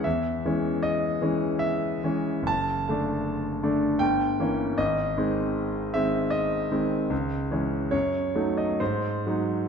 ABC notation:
X:1
M:3/4
L:1/16
Q:1/4=76
K:G#phr
V:1 name="Grand piano"
e4 d4 e4 | a8 =g4 | d6 e2 d2 z2 | z4 c3 d ^B4 |]
V:2 name="Grand piano" clef=bass
E,,2 [E,G,C]4 [E,G,C]4 [E,G,C]2 | F,,,2 [=D,A,=D]4 [D,A,D]2 =G,,,2 [E,_B,_D]2 | G,,,2 [D,G,^B,]4 [D,G,B,]4 [D,G,B,]2 | C,,2 [E,G,C]2 F,,2 [F,A,D]2 G,,2 [F,G,D]2 |]